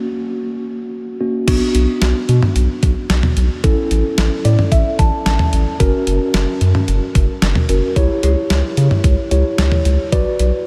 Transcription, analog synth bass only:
1.48 1.60 B1 loud
1.75 1.87 B1 loud
2.02 2.14 B1 loud
2.29 2.41 B2 loud
2.56 2.68 B1 loud
2.83 2.95 B1 loud
3.10 3.22 B1 loud
3.37 3.49 B1 medium
3.64 3.76 A1 loud
3.91 4.03 A1 loud
4.18 4.30 A1 loud
4.45 4.57 A2 loud
4.72 4.84 A1 loud
4.99 5.11 A1 loud
5.26 5.38 A1 loud
5.53 5.65 A1 medium
5.80 5.92 F#1 loud
6.07 6.19 F#1 medium
6.34 6.46 F#1 loud
6.61 6.73 F#2 loud
6.88 7.00 F#1 loud
7.15 7.27 F#1 loud
7.42 7.54 F#1 loud
7.69 7.81 F#1 loud
7.96 8.08 C#2 loud
8.23 8.35 C#2 loud
8.50 8.62 C#2 loud
8.77 8.89 C#3 medium
9.04 9.16 C#2 loud
9.31 9.43 C#2 loud
9.58 9.70 C#2 loud
9.85 9.97 C#2 loud
10.12 10.24 B1 loud
10.39 10.51 B1 loud

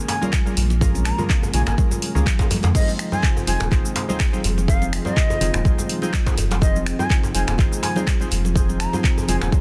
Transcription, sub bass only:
0.57 1.11 A#1 loud
1.54 1.63 A#1 loud
1.67 1.74 G#1 medium
2.15 2.23 C#2 loud
2.64 2.71 F2 medium
3.47 3.56 F1 loud
3.60 3.68 D#1 medium
3.72 3.80 G#1 loud
4.44 4.99 F1 loud
5.41 5.50 F1 loud
5.54 5.61 D#1 medium
5.65 5.74 G#1 loud
6.38 6.92 F1 loud
7.35 7.43 F1 loud
7.48 7.55 D#1 medium
7.59 7.67 G#1 loud
8.32 8.86 F1 loud
9.28 9.37 F1 loud
9.42 9.49 D#1 medium

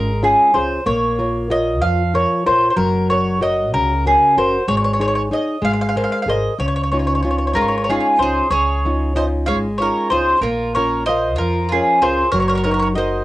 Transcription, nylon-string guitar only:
0.00 0.53 G#3 soft
0.00 0.10 C#4 soft
0.00 0.11 F4 soft
0.00 0.11 G#4 soft
0.23 0.53 C#4 soft
0.23 0.53 F4 soft
0.23 0.54 G#4 soft
0.54 0.79 C#4 soft
0.54 0.80 F4 soft
0.54 0.80 G#4 soft
0.86 1.49 A#3 medium
1.18 1.49 F4 soft
1.18 1.49 A#4 soft
1.18 1.50 C#5 soft
1.50 2.02 F4 soft
1.50 2.02 A#4 soft
1.50 2.02 C#5 soft
1.82 2.44 F3 medium
2.14 2.45 F4 soft
2.14 2.45 A#4 soft
2.14 2.45 C#5 soft
2.46 2.71 F4 soft
2.46 2.71 A#4 soft
2.46 2.71 C#5 soft
2.76 3.39 F#3 medium
3.10 3.40 F#4 soft
3.10 3.40 A#4 soft
3.10 3.41 C#5 soft
3.41 3.92 F#4 soft
3.41 3.92 A#4 soft
3.41 3.93 C#5 soft
3.74 4.35 C#3 soft
4.06 4.56 C#4 soft
4.06 4.36 F#4 soft
4.06 4.37 A#4 soft
4.37 4.62 F#4 soft
4.37 4.62 A#4 soft
4.68 5.30 G#3 medium
5.00 5.30 D#4 soft
5.00 5.31 G#4 soft
5.00 5.31 C#5 soft
5.31 5.56 D#4 soft
5.31 5.57 G#4 soft
5.31 5.57 C#5 soft
5.62 6.25 G#3 medium
5.96 6.27 G#4 soft
5.96 6.28 A#4 soft
5.96 6.28 C5 soft
6.28 6.53 G#4 soft
6.28 6.53 A#4 soft
6.28 6.53 C5 soft
6.60 7.22 C#3 medium
6.93 7.23 C#4 soft
6.93 7.23 D#4 soft
6.93 7.23 F4 soft
7.24 7.76 C#4 soft
7.24 7.76 D#4 soft
7.24 7.76 F4 soft
7.56 8.18 G#3 soft
7.89 8.20 C#4 soft
7.89 8.20 D#4 soft
7.89 8.21 F4 soft
8.21 8.46 C#4 soft
8.21 8.46 D#4 soft
8.21 8.46 F4 soft
8.51 9.14 C#3 medium
8.85 9.15 C#4 soft
8.85 9.15 D#4 soft
8.85 9.15 F4 soft
9.16 9.67 C#4 soft
9.16 9.68 D#4 soft
9.16 9.68 F4 soft
9.48 10.10 G#3 soft
9.80 10.11 C#4 soft
9.80 10.11 D#4 soft
9.80 10.12 F4 soft
10.12 10.37 C#4 soft
10.12 10.37 D#4 soft
10.12 10.37 F4 soft
10.43 11.05 A#3 medium
10.76 11.07 C#4 soft
10.76 11.06 F4 soft
10.76 11.07 A#4 soft
11.08 11.58 F4 soft
11.08 11.59 A#4 soft
11.08 11.59 F5 soft
11.40 12.01 F3 soft
11.72 12.22 C#4 soft
11.72 12.01 F4 soft
11.72 12.01 A#4 soft
12.02 12.27 F4 soft
12.02 12.27 A#4 soft
12.02 12.27 F5 soft
12.34 12.95 F#3 medium
12.65 12.95 D#4 soft
12.65 12.95 F#4 soft
12.65 12.96 A#4 soft
12.96 13.24 D#4 soft
12.96 13.24 F#4 soft
12.96 13.24 A#4 soft

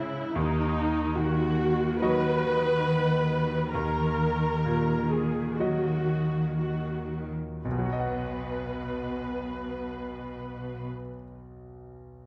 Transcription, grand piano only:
0.00 0.32 C#2 soft
0.00 0.38 G#2 soft
0.00 0.32 G#3 soft
0.00 0.32 E4 soft
0.00 0.32 E5 soft
0.35 3.71 D#2 soft
1.17 2.53 D#3 soft
2.02 3.71 F#3 soft
2.02 3.71 F#4 soft
2.02 3.72 D#5 soft
3.75 7.60 D#2 soft
4.65 6.18 A#2 soft
5.60 7.61 F#3 soft
5.60 7.61 F#4 soft
5.60 7.61 D#5 soft
7.65 10.87 B1 soft
7.71 10.94 B2 soft
7.78 11.01 F#3 soft
7.86 11.08 F#4 soft
7.93 11.15 D#5 soft
8.00 11.22 F#5 soft

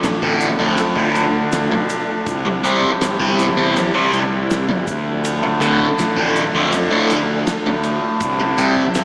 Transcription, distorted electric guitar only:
0.03 muted distorted electric guitar stroke soft
0.22 0.47 D2 medium
0.22 0.47 A2 medium
0.22 0.47 D3 medium
0.59 0.76 D2 medium
0.59 0.77 A2 medium
0.59 0.77 D3 medium
0.78 muted distorted electric guitar stroke soft
0.96 1.21 D2 medium
0.96 1.21 A2 medium
0.96 1.21 D3 medium
1.71 muted distorted electric guitar stroke soft
2.45 muted distorted electric guitar stroke medium
2.63 2.88 C3 medium
2.63 2.88 G3 medium
2.63 2.89 C4 medium
3.02 muted distorted electric guitar stroke soft
3.20 3.44 C3 medium
3.20 3.44 G3 medium
3.20 3.44 C4 medium
3.57 3.75 C3 medium
3.57 3.75 G3 medium
3.57 3.76 C4 medium
3.76 muted distorted electric guitar stroke soft
3.94 4.19 C3 medium
3.94 4.19 G3 medium
3.94 4.18 C4 medium
4.69 muted distorted electric guitar stroke soft
5.43 muted distorted electric guitar stroke soft
5.60 5.85 D2 medium
5.60 5.85 A2 medium
5.60 5.85 D3 medium
5.98 muted distorted electric guitar stroke soft
6.17 6.42 D2 medium
6.17 6.41 A2 medium
6.17 6.41 D3 medium
6.55 6.71 D2 medium
6.55 6.72 A2 medium
6.55 6.72 D3 medium
6.73 muted distorted electric guitar stroke soft
6.90 7.16 D2 medium
6.90 7.15 A2 medium
6.90 7.15 D3 medium
7.66 muted distorted electric guitar stroke soft
8.40 muted distorted electric guitar stroke soft
8.58 8.82 C3 medium
8.58 8.82 G3 medium
8.58 8.83 C4 medium
8.95 muted distorted electric guitar stroke soft

